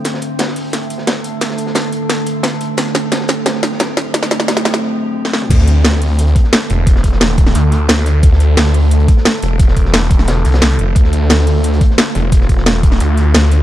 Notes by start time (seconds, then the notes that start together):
Already playing: D3 A3
0.05 A4, snare, closed hi-hat
0.14 snare
0.22 closed hi-hat
0.39 snare, closed hi-hat
0.48 snare
0.56 closed hi-hat, open hi-hat
0.73 snare, closed hi-hat
0.82 closed hi-hat
0.90 closed hi-hat
0.98 snare
1.07 snare, closed hi-hat
1.24 closed hi-hat
1.41 snare, closed hi-hat
1.50 snare
1.58 closed hi-hat
1.66 snare
1.75 snare, closed hi-hat
1.92 closed hi-hat
2.10 snare, closed hi-hat
2.26 closed hi-hat
2.43 snare, closed hi-hat
2.52 snare
2.61 closed hi-hat
2.77 C4, snare, closed hi-hat
2.86 snare
2.95 snare, closed hi-hat
3.12 snare, closed hi-hat
3.20 snare
3.28 snare, closed hi-hat
3.46 snare, closed hi-hat
3.55 snare
3.63 snare, closed hi-hat
3.72 snare
3.79 snare, closed hi-hat
3.97 snare, closed hi-hat
4.14 snare, closed hi-hat
4.23 snare
4.31 snare, closed hi-hat
4.40 snare
4.48 snare, closed hi-hat
4.57 snare
4.65 snare, closed hi-hat
4.74 snare
5.25 snare
5.33 snare
5.42 mid tom
5.50 D2 D3 A3 A4, kick, closed hi-hat, crash
5.59 snare
5.68 closed hi-hat
5.84 snare, closed hi-hat
5.92 snare
6.01 closed hi-hat, open hi-hat
6.19 closed hi-hat
6.27 closed hi-hat
6.36 kick, closed hi-hat
6.44 snare
6.53 snare, closed hi-hat
6.70 E1, closed hi-hat
6.87 kick, closed hi-hat
6.96 snare
7.04 kick, closed hi-hat
7.12 snare
7.21 snare, closed hi-hat
7.38 kick, closed hi-hat
7.46 snare
7.55 D2, closed hi-hat
7.72 closed hi-hat
7.89 D2, snare, closed hi-hat
7.98 snare
8.06 closed hi-hat
8.23 D2, kick, closed hi-hat
8.32 snare
8.40 closed hi-hat
8.57 snare, closed hi-hat
8.66 snare
8.74 closed hi-hat, open hi-hat
8.91 closed hi-hat
9.00 closed hi-hat
9.08 kick, closed hi-hat
9.17 snare
9.25 snare, closed hi-hat
9.42 E1, closed hi-hat
9.60 kick, closed hi-hat
9.68 snare
9.77 kick, closed hi-hat
9.85 snare
9.94 snare, closed hi-hat
10.01 D#1
10.10 kick, closed hi-hat
10.19 snare
10.28 E1, snare, closed hi-hat
10.36 snare
10.45 C2, closed hi-hat
10.52 snare, closed hi-hat
10.61 snare, closed hi-hat
10.70 closed hi-hat
10.79 F1, closed hi-hat
10.95 D2 F4, kick, closed hi-hat
11.04 snare
11.13 closed hi-hat
11.30 snare, closed hi-hat
11.39 snare
11.47 closed hi-hat, open hi-hat
11.64 closed hi-hat
11.74 closed hi-hat
11.81 kick, closed hi-hat
11.91 snare
11.98 snare, closed hi-hat
12.15 E1, closed hi-hat
12.32 kick, closed hi-hat
12.41 snare
12.49 kick, closed hi-hat
12.57 snare
12.66 snare, closed hi-hat
12.74 D#1
12.83 kick, closed hi-hat
12.92 snare
13.00 D2, closed hi-hat
13.17 closed hi-hat
13.34 D2, snare, closed hi-hat
13.43 snare
13.51 closed hi-hat